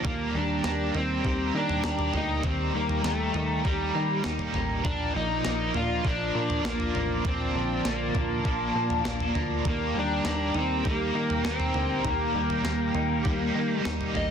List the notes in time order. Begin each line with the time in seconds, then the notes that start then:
Already playing: F3 A#3 D4
0.02 D#2 D#3 G3 A#3 G4 G5 A#5, kick, floor tom
0.06 G4
0.35 D#2 G3 D4
0.62 D#2 G3 A#3, snare
0.66 D4 G4
0.95 D#3 C4, floor tom
1.22 D#2 G3 A#3, kick
1.28 G4
1.54 D#3 A#3 D4
1.69 floor tom
1.82 D#2 G3 A#3, snare
1.88 G4
1.99 floor tom
2.14 D2 A#3 D#4, floor tom
2.43 D#2 D#3 G3 A#3 C4 D#4, kick, floor tom
2.47 G4
2.74 D#2 G3 A#3
2.89 floor tom
3.02 D#2 G3 A3, snare
3.06 D#4 G4
3.34 D#3 D#4, floor tom
3.63 D#2 G3 A#3 D#4, kick
3.69 G4
3.95 D#3 A#3
4.23 D#2 G3 A#3 D#4, snare
4.28 G4
4.39 floor tom
4.54 A1 A#3, floor tom
4.83 A#1 A#2 F3 A#3 D4 F4 D5, kick, floor tom
4.88 A#4
5.14 A#1 F3 D#4
5.42 A#1 F3 A#3, snare
5.48 A#4
5.74 A#2 D4 F4, floor tom
6.03 A#1 F3 A#3, kick
6.07 D4 A#4
6.35 A#2 A#3
6.50 floor tom
6.63 A#1 F3 A#3 D4, snare
6.67 D4 A#4
6.80 floor tom
6.95 A1 A#3, floor tom
7.21 A#1 A#2 D3 F3 A5, kick
7.25 A#3 C4 D4, floor tom
7.30 A#4
7.55 A#1 F3
7.85 A#1 A#3, snare
8.14 A#2 D4, kick, floor tom
8.44 A#1 F3 A#3 D4, kick
8.49 A#4
8.75 A#2 A#3
8.90 floor tom
9.04 A#1 F3 A#3 D4, snare
9.10 A#4
9.20 floor tom
9.35 D2 A#3, floor tom
9.65 D#2 D#3 G3 A#3 G4 A#4 G5 A#5, kick, floor tom
9.69 A#3
9.94 D#2 G3
9.99 D4
10.24 D#2 G3 A#3, snare
10.30 G4
10.55 D#3 D#4, floor tom
10.59 C4
10.83 D#2 G3 A#3 D#4, kick
10.88 A#3 G4
11.15 D#3 A#3
11.30 floor tom
11.43 D#2 G3 A#3 D#4, snare
11.47 C4 D#4 G4
11.60 floor tom
11.74 D2 A#3, floor tom
12.02 D#2 D#3 G3, kick, floor tom
12.07 A#3 D#4
12.11 G4
12.34 D#2 G3
12.50 floor tom
12.65 D#2 A#3, snare
12.95 D#3 D#4, floor tom
13.23 D#2 G3 A#3, kick
13.27 D#4 G4
13.54 D#3 A#3
13.83 D#2 G3 A#3 D#4, snare
13.87 D#4 G4
14.01 floor tom
14.14 A1 A#3 D#5, floor tom